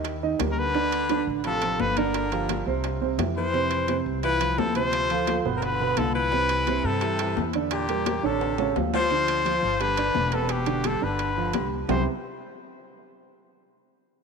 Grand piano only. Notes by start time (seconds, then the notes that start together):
Already playing: D#3 D#4 D#5
0.23 D#3 D#4 D#5
0.40 G3 G4 A#4
0.75 D3 D4 D5
1.10 D3 D4 D5
1.45 F3 F4 A4
1.63 F3 F4 A4
1.98 D3 D4 D5
2.32 F3 F4 G4
2.49 F3 F4 G4
2.67 C3 C4 C5
3.01 C3 C4 C5
3.18 E3 E4 G4
3.53 C3 C4 C5
3.88 C3 C4 C5
4.23 E3 E4 F4
4.41 F3 E4 F4
4.75 C3 C4 C5
5.11 F3 F4 A4
5.28 F3 F4 A4
5.45 B2 B3 B4
5.81 B2 B3 B4
5.98 D3 D4 F4
6.33 C3 C4 B4
6.67 C3 C4 C5
7.02 E3 E4 G4
7.20 E3 E4 G4
7.55 D3 D4 D5
7.89 G3 G4 A#4
8.07 G3 G4 A#4
8.23 D3 D4 C#5
8.58 C#3 C#4 C#5
8.76 F3 F4 G4
9.10 D3 D4
9.45 F3 F4
9.80 G3 G4
9.98 D4 D5
10.32 B3 B4
10.67 D3 D4
10.85 G3 G4
11.02 D3 D4
11.37 F3 F4
11.54 G3 G4
11.88 C3 G3 B3 C4 E4 G4